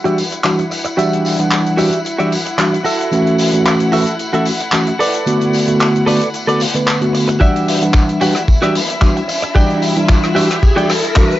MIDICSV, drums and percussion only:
0, 0, Header, 1, 2, 480
1, 0, Start_track
1, 0, Tempo, 535714
1, 880, Time_signature, 4, 2, 24, 8
1, 10210, End_track
2, 0, Start_track
2, 0, Title_t, "Drums"
2, 45, Note_on_c, 9, 42, 43
2, 46, Note_on_c, 9, 54, 24
2, 134, Note_off_c, 9, 42, 0
2, 136, Note_off_c, 9, 54, 0
2, 160, Note_on_c, 9, 46, 91
2, 164, Note_on_c, 9, 54, 91
2, 250, Note_off_c, 9, 46, 0
2, 254, Note_off_c, 9, 54, 0
2, 288, Note_on_c, 9, 42, 63
2, 288, Note_on_c, 9, 54, 34
2, 377, Note_off_c, 9, 42, 0
2, 378, Note_off_c, 9, 54, 0
2, 395, Note_on_c, 9, 39, 107
2, 395, Note_on_c, 9, 54, 52
2, 404, Note_on_c, 9, 42, 56
2, 484, Note_off_c, 9, 39, 0
2, 485, Note_off_c, 9, 54, 0
2, 493, Note_off_c, 9, 42, 0
2, 525, Note_on_c, 9, 42, 39
2, 528, Note_on_c, 9, 54, 26
2, 614, Note_off_c, 9, 42, 0
2, 617, Note_off_c, 9, 54, 0
2, 638, Note_on_c, 9, 54, 84
2, 642, Note_on_c, 9, 46, 94
2, 727, Note_off_c, 9, 54, 0
2, 731, Note_off_c, 9, 46, 0
2, 757, Note_on_c, 9, 42, 64
2, 762, Note_on_c, 9, 54, 39
2, 847, Note_off_c, 9, 42, 0
2, 852, Note_off_c, 9, 54, 0
2, 879, Note_on_c, 9, 54, 53
2, 881, Note_on_c, 9, 42, 62
2, 968, Note_off_c, 9, 54, 0
2, 971, Note_off_c, 9, 42, 0
2, 1001, Note_on_c, 9, 54, 27
2, 1013, Note_on_c, 9, 42, 42
2, 1091, Note_off_c, 9, 54, 0
2, 1103, Note_off_c, 9, 42, 0
2, 1118, Note_on_c, 9, 54, 86
2, 1126, Note_on_c, 9, 46, 100
2, 1208, Note_off_c, 9, 54, 0
2, 1216, Note_off_c, 9, 46, 0
2, 1248, Note_on_c, 9, 54, 39
2, 1252, Note_on_c, 9, 42, 64
2, 1338, Note_off_c, 9, 54, 0
2, 1341, Note_off_c, 9, 42, 0
2, 1356, Note_on_c, 9, 39, 107
2, 1357, Note_on_c, 9, 42, 58
2, 1357, Note_on_c, 9, 54, 44
2, 1445, Note_off_c, 9, 39, 0
2, 1446, Note_off_c, 9, 42, 0
2, 1447, Note_off_c, 9, 54, 0
2, 1490, Note_on_c, 9, 42, 42
2, 1490, Note_on_c, 9, 54, 25
2, 1579, Note_off_c, 9, 54, 0
2, 1580, Note_off_c, 9, 42, 0
2, 1593, Note_on_c, 9, 54, 86
2, 1599, Note_on_c, 9, 46, 90
2, 1683, Note_off_c, 9, 54, 0
2, 1689, Note_off_c, 9, 46, 0
2, 1724, Note_on_c, 9, 42, 68
2, 1730, Note_on_c, 9, 54, 42
2, 1814, Note_off_c, 9, 42, 0
2, 1819, Note_off_c, 9, 54, 0
2, 1835, Note_on_c, 9, 54, 52
2, 1843, Note_on_c, 9, 42, 62
2, 1925, Note_off_c, 9, 54, 0
2, 1932, Note_off_c, 9, 42, 0
2, 1966, Note_on_c, 9, 42, 39
2, 1969, Note_on_c, 9, 54, 26
2, 2056, Note_off_c, 9, 42, 0
2, 2059, Note_off_c, 9, 54, 0
2, 2079, Note_on_c, 9, 46, 94
2, 2084, Note_on_c, 9, 54, 92
2, 2168, Note_off_c, 9, 46, 0
2, 2173, Note_off_c, 9, 54, 0
2, 2206, Note_on_c, 9, 42, 68
2, 2207, Note_on_c, 9, 54, 37
2, 2296, Note_off_c, 9, 42, 0
2, 2296, Note_off_c, 9, 54, 0
2, 2316, Note_on_c, 9, 54, 49
2, 2318, Note_on_c, 9, 39, 120
2, 2323, Note_on_c, 9, 42, 62
2, 2405, Note_off_c, 9, 54, 0
2, 2408, Note_off_c, 9, 39, 0
2, 2413, Note_off_c, 9, 42, 0
2, 2453, Note_on_c, 9, 54, 26
2, 2456, Note_on_c, 9, 42, 45
2, 2542, Note_off_c, 9, 54, 0
2, 2546, Note_off_c, 9, 42, 0
2, 2552, Note_on_c, 9, 54, 91
2, 2563, Note_on_c, 9, 46, 94
2, 2642, Note_off_c, 9, 54, 0
2, 2652, Note_off_c, 9, 46, 0
2, 2683, Note_on_c, 9, 54, 39
2, 2697, Note_on_c, 9, 42, 56
2, 2773, Note_off_c, 9, 54, 0
2, 2786, Note_off_c, 9, 42, 0
2, 2792, Note_on_c, 9, 54, 51
2, 2800, Note_on_c, 9, 42, 56
2, 2881, Note_off_c, 9, 54, 0
2, 2890, Note_off_c, 9, 42, 0
2, 2922, Note_on_c, 9, 54, 28
2, 2928, Note_on_c, 9, 42, 38
2, 3012, Note_off_c, 9, 54, 0
2, 3018, Note_off_c, 9, 42, 0
2, 3032, Note_on_c, 9, 54, 96
2, 3038, Note_on_c, 9, 46, 104
2, 3122, Note_off_c, 9, 54, 0
2, 3128, Note_off_c, 9, 46, 0
2, 3163, Note_on_c, 9, 42, 57
2, 3169, Note_on_c, 9, 54, 37
2, 3252, Note_off_c, 9, 42, 0
2, 3259, Note_off_c, 9, 54, 0
2, 3277, Note_on_c, 9, 54, 56
2, 3279, Note_on_c, 9, 42, 58
2, 3283, Note_on_c, 9, 39, 116
2, 3366, Note_off_c, 9, 54, 0
2, 3369, Note_off_c, 9, 42, 0
2, 3373, Note_off_c, 9, 39, 0
2, 3399, Note_on_c, 9, 54, 25
2, 3405, Note_on_c, 9, 42, 45
2, 3489, Note_off_c, 9, 54, 0
2, 3494, Note_off_c, 9, 42, 0
2, 3513, Note_on_c, 9, 54, 85
2, 3518, Note_on_c, 9, 46, 99
2, 3603, Note_off_c, 9, 54, 0
2, 3607, Note_off_c, 9, 46, 0
2, 3644, Note_on_c, 9, 42, 62
2, 3644, Note_on_c, 9, 54, 39
2, 3734, Note_off_c, 9, 42, 0
2, 3734, Note_off_c, 9, 54, 0
2, 3756, Note_on_c, 9, 42, 58
2, 3758, Note_on_c, 9, 54, 57
2, 3846, Note_off_c, 9, 42, 0
2, 3847, Note_off_c, 9, 54, 0
2, 3883, Note_on_c, 9, 42, 43
2, 3890, Note_on_c, 9, 54, 25
2, 3973, Note_off_c, 9, 42, 0
2, 3979, Note_off_c, 9, 54, 0
2, 3991, Note_on_c, 9, 54, 87
2, 3994, Note_on_c, 9, 46, 98
2, 4081, Note_off_c, 9, 54, 0
2, 4084, Note_off_c, 9, 46, 0
2, 4124, Note_on_c, 9, 42, 67
2, 4127, Note_on_c, 9, 54, 38
2, 4214, Note_off_c, 9, 42, 0
2, 4216, Note_off_c, 9, 54, 0
2, 4229, Note_on_c, 9, 39, 116
2, 4232, Note_on_c, 9, 54, 49
2, 4240, Note_on_c, 9, 42, 61
2, 4319, Note_off_c, 9, 39, 0
2, 4322, Note_off_c, 9, 54, 0
2, 4330, Note_off_c, 9, 42, 0
2, 4361, Note_on_c, 9, 42, 44
2, 4364, Note_on_c, 9, 54, 26
2, 4450, Note_off_c, 9, 42, 0
2, 4454, Note_off_c, 9, 54, 0
2, 4481, Note_on_c, 9, 46, 102
2, 4483, Note_on_c, 9, 54, 84
2, 4570, Note_off_c, 9, 46, 0
2, 4573, Note_off_c, 9, 54, 0
2, 4602, Note_on_c, 9, 42, 57
2, 4602, Note_on_c, 9, 54, 36
2, 4692, Note_off_c, 9, 42, 0
2, 4692, Note_off_c, 9, 54, 0
2, 4715, Note_on_c, 9, 54, 49
2, 4721, Note_on_c, 9, 42, 65
2, 4804, Note_off_c, 9, 54, 0
2, 4811, Note_off_c, 9, 42, 0
2, 4844, Note_on_c, 9, 54, 25
2, 4849, Note_on_c, 9, 42, 43
2, 4934, Note_off_c, 9, 54, 0
2, 4939, Note_off_c, 9, 42, 0
2, 4956, Note_on_c, 9, 54, 88
2, 4965, Note_on_c, 9, 46, 99
2, 5046, Note_off_c, 9, 54, 0
2, 5055, Note_off_c, 9, 46, 0
2, 5084, Note_on_c, 9, 54, 34
2, 5085, Note_on_c, 9, 42, 56
2, 5174, Note_off_c, 9, 54, 0
2, 5175, Note_off_c, 9, 42, 0
2, 5192, Note_on_c, 9, 54, 47
2, 5199, Note_on_c, 9, 42, 62
2, 5205, Note_on_c, 9, 39, 103
2, 5282, Note_off_c, 9, 54, 0
2, 5288, Note_off_c, 9, 42, 0
2, 5295, Note_off_c, 9, 39, 0
2, 5329, Note_on_c, 9, 54, 26
2, 5338, Note_on_c, 9, 42, 45
2, 5419, Note_off_c, 9, 54, 0
2, 5428, Note_off_c, 9, 42, 0
2, 5441, Note_on_c, 9, 54, 88
2, 5443, Note_on_c, 9, 46, 101
2, 5531, Note_off_c, 9, 54, 0
2, 5533, Note_off_c, 9, 46, 0
2, 5565, Note_on_c, 9, 54, 39
2, 5568, Note_on_c, 9, 42, 59
2, 5655, Note_off_c, 9, 54, 0
2, 5658, Note_off_c, 9, 42, 0
2, 5678, Note_on_c, 9, 54, 53
2, 5681, Note_on_c, 9, 42, 57
2, 5768, Note_off_c, 9, 54, 0
2, 5771, Note_off_c, 9, 42, 0
2, 5808, Note_on_c, 9, 54, 28
2, 5810, Note_on_c, 9, 42, 42
2, 5897, Note_off_c, 9, 54, 0
2, 5900, Note_off_c, 9, 42, 0
2, 5914, Note_on_c, 9, 54, 93
2, 5922, Note_on_c, 9, 46, 118
2, 6003, Note_off_c, 9, 54, 0
2, 6011, Note_off_c, 9, 46, 0
2, 6046, Note_on_c, 9, 54, 38
2, 6048, Note_on_c, 9, 42, 62
2, 6136, Note_off_c, 9, 54, 0
2, 6138, Note_off_c, 9, 42, 0
2, 6160, Note_on_c, 9, 54, 50
2, 6162, Note_on_c, 9, 39, 113
2, 6167, Note_on_c, 9, 42, 62
2, 6249, Note_off_c, 9, 54, 0
2, 6251, Note_off_c, 9, 39, 0
2, 6256, Note_off_c, 9, 42, 0
2, 6286, Note_on_c, 9, 42, 43
2, 6291, Note_on_c, 9, 54, 25
2, 6376, Note_off_c, 9, 42, 0
2, 6381, Note_off_c, 9, 54, 0
2, 6402, Note_on_c, 9, 46, 92
2, 6403, Note_on_c, 9, 54, 99
2, 6492, Note_off_c, 9, 46, 0
2, 6493, Note_off_c, 9, 54, 0
2, 6523, Note_on_c, 9, 54, 36
2, 6532, Note_on_c, 9, 42, 59
2, 6613, Note_off_c, 9, 54, 0
2, 6622, Note_off_c, 9, 42, 0
2, 6638, Note_on_c, 9, 36, 106
2, 6644, Note_on_c, 9, 54, 52
2, 6646, Note_on_c, 9, 42, 62
2, 6728, Note_off_c, 9, 36, 0
2, 6734, Note_off_c, 9, 54, 0
2, 6736, Note_off_c, 9, 42, 0
2, 6770, Note_on_c, 9, 54, 24
2, 6773, Note_on_c, 9, 42, 43
2, 6860, Note_off_c, 9, 54, 0
2, 6862, Note_off_c, 9, 42, 0
2, 6881, Note_on_c, 9, 46, 108
2, 6882, Note_on_c, 9, 54, 83
2, 6971, Note_off_c, 9, 46, 0
2, 6972, Note_off_c, 9, 54, 0
2, 7007, Note_on_c, 9, 54, 36
2, 7009, Note_on_c, 9, 42, 65
2, 7097, Note_off_c, 9, 54, 0
2, 7099, Note_off_c, 9, 42, 0
2, 7110, Note_on_c, 9, 39, 108
2, 7115, Note_on_c, 9, 54, 54
2, 7116, Note_on_c, 9, 42, 59
2, 7117, Note_on_c, 9, 36, 123
2, 7200, Note_off_c, 9, 39, 0
2, 7204, Note_off_c, 9, 54, 0
2, 7205, Note_off_c, 9, 42, 0
2, 7206, Note_off_c, 9, 36, 0
2, 7247, Note_on_c, 9, 42, 44
2, 7249, Note_on_c, 9, 54, 26
2, 7336, Note_off_c, 9, 42, 0
2, 7338, Note_off_c, 9, 54, 0
2, 7355, Note_on_c, 9, 46, 94
2, 7356, Note_on_c, 9, 54, 93
2, 7444, Note_off_c, 9, 46, 0
2, 7446, Note_off_c, 9, 54, 0
2, 7480, Note_on_c, 9, 37, 59
2, 7484, Note_on_c, 9, 54, 38
2, 7493, Note_on_c, 9, 42, 57
2, 7570, Note_off_c, 9, 37, 0
2, 7573, Note_off_c, 9, 54, 0
2, 7583, Note_off_c, 9, 42, 0
2, 7597, Note_on_c, 9, 42, 63
2, 7599, Note_on_c, 9, 36, 110
2, 7601, Note_on_c, 9, 54, 50
2, 7687, Note_off_c, 9, 42, 0
2, 7689, Note_off_c, 9, 36, 0
2, 7690, Note_off_c, 9, 54, 0
2, 7725, Note_on_c, 9, 37, 62
2, 7726, Note_on_c, 9, 54, 25
2, 7730, Note_on_c, 9, 42, 43
2, 7815, Note_off_c, 9, 37, 0
2, 7815, Note_off_c, 9, 54, 0
2, 7820, Note_off_c, 9, 42, 0
2, 7839, Note_on_c, 9, 46, 108
2, 7852, Note_on_c, 9, 54, 83
2, 7929, Note_off_c, 9, 46, 0
2, 7941, Note_off_c, 9, 54, 0
2, 7970, Note_on_c, 9, 42, 58
2, 7971, Note_on_c, 9, 54, 37
2, 8060, Note_off_c, 9, 42, 0
2, 8061, Note_off_c, 9, 54, 0
2, 8077, Note_on_c, 9, 39, 100
2, 8078, Note_on_c, 9, 36, 109
2, 8078, Note_on_c, 9, 42, 64
2, 8078, Note_on_c, 9, 54, 49
2, 8167, Note_off_c, 9, 36, 0
2, 8167, Note_off_c, 9, 39, 0
2, 8167, Note_off_c, 9, 42, 0
2, 8167, Note_off_c, 9, 54, 0
2, 8206, Note_on_c, 9, 54, 25
2, 8212, Note_on_c, 9, 42, 41
2, 8295, Note_off_c, 9, 54, 0
2, 8301, Note_off_c, 9, 42, 0
2, 8319, Note_on_c, 9, 46, 99
2, 8320, Note_on_c, 9, 54, 83
2, 8409, Note_off_c, 9, 46, 0
2, 8409, Note_off_c, 9, 54, 0
2, 8446, Note_on_c, 9, 42, 61
2, 8448, Note_on_c, 9, 54, 40
2, 8535, Note_off_c, 9, 42, 0
2, 8537, Note_off_c, 9, 54, 0
2, 8559, Note_on_c, 9, 42, 63
2, 8560, Note_on_c, 9, 54, 53
2, 8561, Note_on_c, 9, 36, 124
2, 8649, Note_off_c, 9, 42, 0
2, 8649, Note_off_c, 9, 54, 0
2, 8651, Note_off_c, 9, 36, 0
2, 8687, Note_on_c, 9, 54, 24
2, 8690, Note_on_c, 9, 42, 41
2, 8777, Note_off_c, 9, 54, 0
2, 8779, Note_off_c, 9, 42, 0
2, 8797, Note_on_c, 9, 54, 83
2, 8801, Note_on_c, 9, 46, 93
2, 8887, Note_off_c, 9, 54, 0
2, 8891, Note_off_c, 9, 46, 0
2, 8927, Note_on_c, 9, 42, 64
2, 8927, Note_on_c, 9, 54, 35
2, 9016, Note_off_c, 9, 42, 0
2, 9016, Note_off_c, 9, 54, 0
2, 9039, Note_on_c, 9, 39, 104
2, 9039, Note_on_c, 9, 42, 60
2, 9043, Note_on_c, 9, 54, 47
2, 9044, Note_on_c, 9, 36, 108
2, 9128, Note_off_c, 9, 42, 0
2, 9129, Note_off_c, 9, 39, 0
2, 9132, Note_off_c, 9, 54, 0
2, 9134, Note_off_c, 9, 36, 0
2, 9167, Note_on_c, 9, 42, 40
2, 9171, Note_on_c, 9, 37, 67
2, 9178, Note_on_c, 9, 54, 27
2, 9257, Note_off_c, 9, 42, 0
2, 9261, Note_off_c, 9, 37, 0
2, 9267, Note_off_c, 9, 54, 0
2, 9281, Note_on_c, 9, 46, 100
2, 9281, Note_on_c, 9, 54, 80
2, 9371, Note_off_c, 9, 46, 0
2, 9371, Note_off_c, 9, 54, 0
2, 9413, Note_on_c, 9, 42, 60
2, 9413, Note_on_c, 9, 54, 36
2, 9414, Note_on_c, 9, 37, 67
2, 9503, Note_off_c, 9, 37, 0
2, 9503, Note_off_c, 9, 42, 0
2, 9503, Note_off_c, 9, 54, 0
2, 9520, Note_on_c, 9, 54, 51
2, 9523, Note_on_c, 9, 36, 120
2, 9523, Note_on_c, 9, 42, 61
2, 9610, Note_off_c, 9, 54, 0
2, 9612, Note_off_c, 9, 36, 0
2, 9612, Note_off_c, 9, 42, 0
2, 9652, Note_on_c, 9, 54, 26
2, 9654, Note_on_c, 9, 42, 46
2, 9741, Note_off_c, 9, 54, 0
2, 9743, Note_off_c, 9, 42, 0
2, 9759, Note_on_c, 9, 54, 83
2, 9761, Note_on_c, 9, 46, 109
2, 9764, Note_on_c, 9, 37, 76
2, 9848, Note_off_c, 9, 54, 0
2, 9851, Note_off_c, 9, 46, 0
2, 9854, Note_off_c, 9, 37, 0
2, 9896, Note_on_c, 9, 42, 61
2, 9899, Note_on_c, 9, 54, 36
2, 9985, Note_off_c, 9, 42, 0
2, 9989, Note_off_c, 9, 54, 0
2, 9998, Note_on_c, 9, 39, 108
2, 10006, Note_on_c, 9, 36, 121
2, 10006, Note_on_c, 9, 42, 67
2, 10006, Note_on_c, 9, 54, 46
2, 10088, Note_off_c, 9, 39, 0
2, 10095, Note_off_c, 9, 36, 0
2, 10096, Note_off_c, 9, 42, 0
2, 10096, Note_off_c, 9, 54, 0
2, 10133, Note_on_c, 9, 54, 23
2, 10134, Note_on_c, 9, 42, 46
2, 10210, Note_off_c, 9, 42, 0
2, 10210, Note_off_c, 9, 54, 0
2, 10210, End_track
0, 0, End_of_file